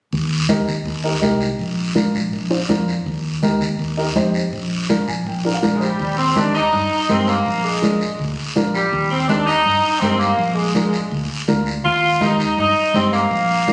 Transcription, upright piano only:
0.49 D#4 G4 A#4
1.04 D#4 G4 A#4
1.22 D#4 G4 A#4
1.95 D4 F4 A#4
2.50 D4 F4 C5
2.69 D4 F4 A#4
3.42 D#4 G4 A#4
3.97 D#4 G4 A#4
4.16 D#4 G4 C5
4.89 D4 F4 A#4
5.08 G#5
5.27 G5
5.44 D4 F4 A#4
5.54 F5
5.62 D4 F4 A#4 D5
5.80 C5
6.36 D#4 G4 A#4
7.09 D#4 G4 A#4
7.82 D4 F4 A#4
8.56 D4 F4 A#4
9.29 D#4 G4 A#4
10.02 D#4 G4 A#4
10.75 D4 F4 A#4
11.48 D4 F4 A#4
12.21 D#4 G4 A#4
12.95 D#4 G4 C5
13.67 D4 F4 A#4

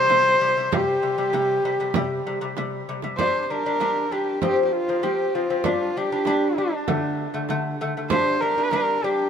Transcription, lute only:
0.10 C3 G3
0.41 C3 G3
0.57 C3 G3
0.72 C3 G3
1.02 C3 G3
1.18 C3 G3
1.33 C3 G3
1.65 C3 G3
1.80 C3 G3
1.95 C3 G3
2.27 C3 G3
2.41 C3 G3
2.57 C3 G3
2.89 C3 G3
3.03 C3 G3
3.19 G3 D4
3.50 G3 D4
3.66 G3 D4
3.81 G3 D4
4.12 G3 D4
4.42 F3 C4
4.89 F3 C4
5.03 F3 C4
5.35 F3 C4
5.50 F3 C4
5.65 G3 D4
5.97 G3 D4
6.12 G3 D4
6.27 G3 D4
6.58 G3 D4
6.88 D3 A3
7.34 D3 A3
7.50 D3 A3
7.81 D3 A3
7.97 D3 A3
8.12 G3 D4
8.42 G3 D4
8.58 G3 D4
8.73 G3 D4
9.04 G3 D4

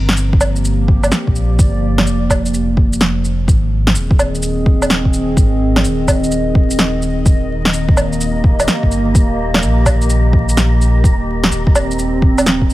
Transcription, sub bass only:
Already playing: G1
1.27 A#1
1.59 G1
2.06 F1
3.48 G#1
3.95 D#1
5.37 G#1
5.84 D#1
7.26 D#1
8.83 G1
9.15 D#1
9.63 A#1
11.04 D#1
11.51 D#1

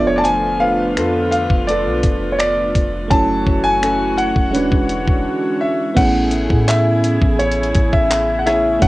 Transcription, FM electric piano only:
Already playing: B3 D4 F4 A4
3.08 A3 C#4
3.13 E4 A4
4.51 G#3 C#4
4.56 D4 F#4
5.94 B3 C#4
5.99 E4 G#4
8.79 A3 C#4
8.84 E4

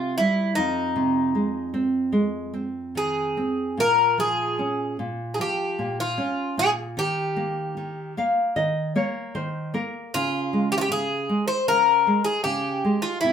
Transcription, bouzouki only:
Already playing: F4
0.18 E4
0.55 D#4
2.97 G#4
3.80 A#4
4.20 G#4
5.34 G#4
5.41 G4
6.00 F4
6.59 G#4
6.99 G4
10.14 F4
10.72 G4
10.78 F4 G4
10.92 G#4
11.48 C5
11.68 A#4
12.24 G#4
12.44 G4
13.02 F4
13.21 E4

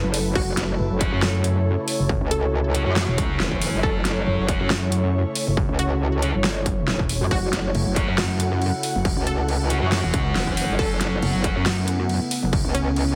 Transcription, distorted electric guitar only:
1.00 F#3 C#4 F#4
1.12 F#3 C#4 F#4
2.74 F#3 C#4 F#4
2.86 F#3 C#4 F#4
4.48 F#3 C#4 F#4
4.60 F#3 C#4 F#4
6.22 F#3 C#4 F#4
7.96 F#3 C#4 F#4
8.08 F#3 C#4 F#4
9.70 F#3 C#4 F#4
9.82 F#3 C#4 F#4
11.44 F#3 C#4 F#4
11.56 F#3 C#4 F#4

